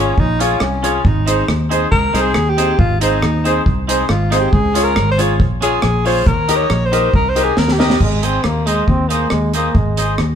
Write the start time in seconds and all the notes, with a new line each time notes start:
Already playing: G#1 C#4 F4 G#4 C#5
0.18 A#1 D#4, kick
0.39 C#4 F4 G#4 C#5, closed hi-hat
0.60 C2 C#4, cross-stick
0.83 C#4 F4 G#4 C#5, closed hi-hat
1.05 G#1 D#4, kick
1.26 C4 D#4 G#4 C5, closed hi-hat
1.48 D#2, cross-stick
1.69 C4 D#4 G#4 C5, closed hi-hat
1.92 C#2 A#4, kick
2.13 C2 C4 D#4 G#4 C5, cross-stick, closed hi-hat
2.21 G#4
2.34 D#2, cross-stick
2.50 G4
2.57 C4 D#4 G#4 C5, closed hi-hat
2.79 G#1 F4, kick
3.01 C4 D#4 G#4 C5, closed hi-hat
3.22 D#2, cross-stick
3.44 C4 D#4 G#4 C5, closed hi-hat
3.66 C2, kick
3.88 C4 D#4 G#4 C5, closed hi-hat
4.09 G#1 F4, cross-stick
4.30 C4 D#4 G#4 C5, cross-stick, closed hi-hat
4.40 G4
4.53 C#2 G#4, kick
4.73 C#4 F4 G#4 C#5, closed hi-hat
4.84 A#4
4.96 G#1, cross-stick
5.12 C5
5.17 C#4 F4 G#4 C#5, closed hi-hat
5.40 A#1, kick
5.61 C#4 F4 G#4 C#5, closed hi-hat
5.82 A#1, cross-stick
6.05 C#4 F4 G#4 C5 C#5, open hi-hat
6.26 D#2 A#4, kick, hi-hat pedal
6.48 D#4 G4 A#4 D#5, closed hi-hat
6.56 C#5
6.70 A#1, cross-stick
6.86 C5
6.92 D#4 G4 A#4 D#5, closed hi-hat
7.14 C2 A#4, kick
7.29 C5
7.35 D#4 G4 A#4 D#5, closed hi-hat
7.44 G#4
7.57 D#2 A#4, snare
7.68 G4, snare
7.78 D#4 G4 A#4 D#5, snare
7.90 snare
8.01 G#1 G#3, kick, crash
8.22 C4 D#4 G#4 C5 D#5, closed hi-hat
8.43 D#2 A#3, muted clean electric guitar stroke, cross-stick
8.66 G#3 D#4 G#4 C5 D#5, closed hi-hat
8.88 D#2 C4, kick
9.09 A#3 D#4 G#4 C5 D#5, closed hi-hat
9.30 D#2 G#3, muted clean electric guitar stroke, cross-stick
9.54 A#3 D#4 G#4 C5 D#5, closed hi-hat
9.75 G#1 G#3, kick
9.97 D#4 G#4 C5 D#5, closed hi-hat
10.18 D#2, muted clean electric guitar stroke, cross-stick